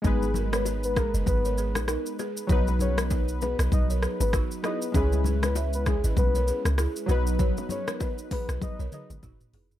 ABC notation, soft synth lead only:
X:1
M:4/4
L:1/16
Q:"Swing 16ths" 1/4=98
K:B
V:1 name="Soft synth lead"
G2 z B z B A z B3 z4 z | z2 c z3 B z d z2 B z2 d z | G2 z B z B G z B3 z4 z | z2 c z3 B z d z d z4 z |]